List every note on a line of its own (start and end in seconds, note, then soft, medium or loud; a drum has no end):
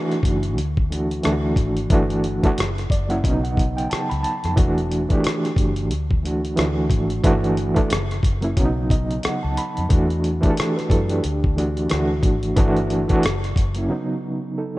0.00 0.58 E3 medium
0.00 0.59 A3 medium
0.00 0.58 D4 medium
0.00 0.59 F#4 loud
0.12 cross-stick soft
0.12 closed hi-hat soft
0.23 0.58 F#1 medium
0.23 kick medium
0.23 closed hi-hat medium
0.43 closed hi-hat soft
0.58 1.20 D2 medium
0.58 closed hi-hat medium
0.77 kick medium
0.91 1.22 E3 medium
0.91 1.23 A3 medium
0.91 1.24 D4 medium
0.91 1.25 F#4 medium
0.91 closed hi-hat medium
1.11 closed hi-hat soft
1.23 1.55 D2 medium
1.23 1.79 E3 medium
1.23 1.79 A3 medium
1.23 1.80 D4 medium
1.23 1.32 E4 medium
1.23 cross-stick medium
1.23 closed hi-hat medium
1.32 1.83 F#4 medium
1.56 1.87 G#1 medium
1.56 kick medium
1.56 closed hi-hat medium
1.77 closed hi-hat soft
1.90 2.39 G1 medium
1.90 2.31 E3 medium
1.90 2.32 A3 medium
1.90 2.32 D4 medium
1.90 2.33 F#4 medium
1.90 kick loud
1.90 closed hi-hat medium
2.10 closed hi-hat soft
2.24 closed hi-hat medium
2.43 2.57 E3 medium
2.43 2.58 A3 medium
2.43 2.58 D4 medium
2.43 2.59 F#4 medium
2.43 kick medium
2.43 closed hi-hat soft
2.58 2.88 F#1 medium
2.58 cross-stick loud
2.58 closed hi-hat medium
2.78 cross-stick soft
2.78 closed hi-hat soft
2.90 3.21 F#1 medium
2.90 3.08 D5 medium
2.90 kick medium
2.90 closed hi-hat medium
3.09 3.23 F#3 medium
3.09 3.23 A#3 medium
3.09 3.24 C#4 medium
3.09 3.24 E4 medium
3.09 3.23 F#5 medium
3.09 closed hi-hat soft
3.23 3.87 B1 medium
3.23 4.31 C#3 medium
3.23 4.31 F#3 medium
3.23 4.32 B3 medium
3.23 3.32 C#4 medium
3.23 3.42 D#5 medium
3.23 kick medium
3.23 closed hi-hat medium
3.32 4.36 D#4 medium
3.43 3.74 F#5 medium
3.43 closed hi-hat soft
3.57 kick medium
3.57 closed hi-hat medium
3.77 3.90 G5 medium
3.77 closed hi-hat soft
3.90 4.08 A5 medium
3.90 muted fingered electric bass stroke soft
3.90 cross-stick medium
3.90 closed hi-hat medium
4.09 4.23 C#2 medium
4.09 4.23 B5 medium
4.09 closed hi-hat soft
4.23 4.54 A5 medium
4.23 closed hi-hat medium
4.44 4.56 F2 medium
4.44 cross-stick soft
4.44 closed hi-hat soft
4.56 5.06 E1 medium
4.56 4.97 E3 loud
4.56 4.97 A3 medium
4.56 4.98 D4 medium
4.56 4.99 F#4 loud
4.56 kick loud
4.56 closed hi-hat medium
4.78 closed hi-hat soft
4.92 closed hi-hat medium
5.09 5.90 E3 medium
5.09 5.90 A3 medium
5.09 5.91 D4 medium
5.09 5.92 G4 medium
5.09 kick medium
5.09 closed hi-hat soft
5.24 cross-stick loud
5.24 closed hi-hat medium
5.45 cross-stick soft
5.45 closed hi-hat soft
5.56 5.92 F#1 medium
5.56 kick medium
5.56 closed hi-hat medium
5.76 closed hi-hat soft
5.91 6.54 D2 medium
5.91 closed hi-hat medium
6.11 kick medium
6.23 6.55 E3 medium
6.23 6.56 A3 medium
6.23 6.57 D4 medium
6.23 6.58 F#4 medium
6.23 closed hi-hat medium
6.45 closed hi-hat soft
6.56 6.88 D2 medium
6.56 7.12 E3 medium
6.56 7.12 A3 medium
6.56 7.13 D4 medium
6.56 6.65 F4 medium
6.56 cross-stick loud
6.56 closed hi-hat medium
6.66 7.16 F#4 medium
6.90 7.20 G#1 medium
6.90 kick medium
6.90 closed hi-hat medium
7.10 closed hi-hat soft
7.24 7.72 G1 medium
7.24 7.64 E3 medium
7.24 7.65 A3 medium
7.24 7.65 D4 medium
7.24 7.66 F#4 loud
7.24 kick loud
7.24 closed hi-hat medium
7.44 closed hi-hat soft
7.57 closed hi-hat soft
7.75 7.90 E3 medium
7.75 7.90 A3 medium
7.75 7.90 D4 medium
7.75 7.91 A4 medium
7.75 kick medium
7.75 closed hi-hat soft
7.90 8.21 F#1 medium
7.90 cross-stick loud
7.90 closed hi-hat medium
8.11 cross-stick soft
8.11 closed hi-hat soft
8.23 8.54 F#1 medium
8.23 kick medium
8.23 closed hi-hat medium
8.41 8.56 F#3 medium
8.41 8.57 A#3 medium
8.41 8.57 C#4 medium
8.41 8.58 E4 medium
8.41 closed hi-hat soft
8.56 9.20 B1 medium
8.56 9.64 C#3 medium
8.56 9.65 F#3 medium
8.56 9.65 B3 medium
8.56 8.65 C#4 medium
8.56 kick medium
8.56 closed hi-hat medium
8.66 9.69 D#4 medium
8.90 9.22 D#5 medium
8.90 kick medium
8.90 closed hi-hat medium
9.11 closed hi-hat soft
9.23 9.42 F#5 medium
9.23 muted fingered electric bass stroke soft
9.23 cross-stick loud
9.23 closed hi-hat medium
9.43 9.56 C#2 medium
9.43 9.56 A5 medium
9.57 9.88 B5 medium
9.57 closed hi-hat medium
9.77 9.90 F2 medium
9.77 closed hi-hat soft
9.89 10.39 E2 medium
9.89 10.30 E3 medium
9.89 10.31 A3 medium
9.89 10.31 D4 medium
9.89 10.32 F#4 medium
9.89 kick loud
9.89 closed hi-hat medium
10.10 closed hi-hat soft
10.24 closed hi-hat soft
10.41 11.22 E3 medium
10.41 11.23 A3 medium
10.41 10.57 D4 medium
10.41 10.49 G4 medium
10.41 kick medium
10.41 closed hi-hat soft
10.50 10.56 A4 medium
10.57 cross-stick loud
10.57 closed hi-hat medium
10.77 10.90 F#4 medium
10.77 10.90 B4 medium
10.77 cross-stick soft
10.77 closed hi-hat soft
10.90 11.21 F#2 medium
10.90 11.09 E4 medium
10.90 11.09 A4 medium
10.90 kick medium
10.90 closed hi-hat medium
11.09 11.42 D4 soft
11.09 11.41 G4 medium
11.09 closed hi-hat soft
11.24 11.87 D2 medium
11.24 closed hi-hat medium
11.44 kick medium
11.56 11.89 E3 medium
11.56 11.90 A3 medium
11.56 11.91 D4 medium
11.56 11.91 F#4 medium
11.56 closed hi-hat medium
11.77 closed hi-hat soft
11.89 12.22 D2 medium
11.89 12.45 E3 medium
11.89 12.46 A3 medium
11.89 12.46 D4 medium
11.89 12.47 F#4 medium
11.89 cross-stick loud
11.89 closed hi-hat medium
12.23 12.54 G#1 medium
12.23 kick medium
12.23 closed hi-hat medium
12.43 closed hi-hat soft
12.56 13.06 G1 medium
12.56 12.97 E3 medium
12.56 12.98 A3 medium
12.56 12.98 D4 medium
12.56 12.99 F#4 loud
12.56 kick loud
12.56 closed hi-hat medium
12.77 closed hi-hat soft
12.90 closed hi-hat soft
13.08 13.23 E3 medium
13.08 13.23 A3 medium
13.08 13.24 D4 medium
13.08 13.24 F#4 medium
13.08 kick medium
13.08 closed hi-hat soft
13.23 13.54 F#1 medium
13.23 cross-stick loud
13.23 closed hi-hat medium
13.44 cross-stick soft
13.44 closed hi-hat soft
13.56 13.87 F#1 medium
13.56 kick medium
13.56 closed hi-hat medium
13.75 13.89 F#3 medium
13.75 13.90 A#3 medium
13.75 13.91 C#4 medium
13.75 13.91 E4 medium
13.75 closed hi-hat soft
13.88 14.79 C#3 medium
13.88 14.79 F#3 medium
13.88 14.79 B3 medium
13.88 14.58 D#4 medium
14.58 14.76 D#4 soft
14.58 14.76 A4 medium